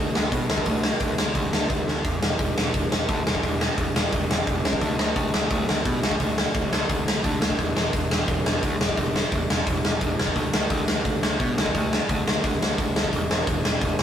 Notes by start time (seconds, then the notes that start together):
0.15 D2, snare
0.32 B2, kick, open hi-hat
0.49 D2, snare
0.58 kick
0.65 D2, kick, open hi-hat
0.83 snare
1.00 D2, kick, open hi-hat
1.18 D2, snare
1.35 D2, kick, open hi-hat
1.52 D2, snare
1.70 D2, kick, open hi-hat
1.87 D2, snare
2.05 E1, kick, open hi-hat
2.22 E1, snare
2.39 E1, kick, open hi-hat
2.57 E1, snare
2.74 E1, kick, open hi-hat
2.92 E1, snare
3.09 D2, kick, open hi-hat
3.26 E1, snare
3.35 kick
3.43 E1, kick, open hi-hat
3.61 snare
3.78 E1, kick, open hi-hat
3.95 E1, snare
4.13 E1, kick, open hi-hat
4.30 E1, snare
4.47 E1, kick, open hi-hat
4.64 C#2, snare
4.73 kick
4.81 D2, kick, open hi-hat
4.98 D2, snare
5.16 D2, kick, open hi-hat
5.34 D2, snare
5.50 D2, kick, open hi-hat
5.68 D2, snare
5.85 B2, kick, open hi-hat
6.03 D2, snare
6.11 kick
6.20 D2, kick, open hi-hat
6.38 snare
6.54 D2, kick, open hi-hat
6.71 D2, snare
6.89 D2, kick, open hi-hat
7.06 D2, snare
7.24 D2, kick, open hi-hat
7.41 D2, snare
7.50 kick
7.59 E1, kick, open hi-hat
7.75 E1, snare
7.93 E1, kick, open hi-hat
8.10 E1, snare
8.28 E1, kick, open hi-hat
8.45 E1, snare
8.63 D2, kick, open hi-hat
8.79 E1, snare
8.89 kick
8.97 E1, kick, open hi-hat
9.16 snare
9.32 E1, kick, open hi-hat
9.50 E1, snare
9.67 E1, kick, open hi-hat
9.84 E1, snare
10.01 E1, kick, open hi-hat
10.19 E1, snare
10.27 kick
10.36 D2, kick, open hi-hat
10.53 D2, snare
10.70 D2, kick, open hi-hat
10.88 D2, snare
11.05 D2, kick, open hi-hat
11.22 D2, snare
11.40 B2, kick, open hi-hat
11.57 D2, snare
11.66 kick
11.74 D2, kick, open hi-hat
11.93 snare
12.09 D2, kick, open hi-hat
12.26 D2, snare
12.44 D2, kick, open hi-hat
12.61 D2, snare
12.78 D2, kick, open hi-hat
12.96 D2, snare
13.04 kick
13.13 E1, kick, open hi-hat
13.30 E1, snare
13.47 E1, kick, open hi-hat
13.64 E1, snare
13.81 E1, kick, open hi-hat
13.98 E1, snare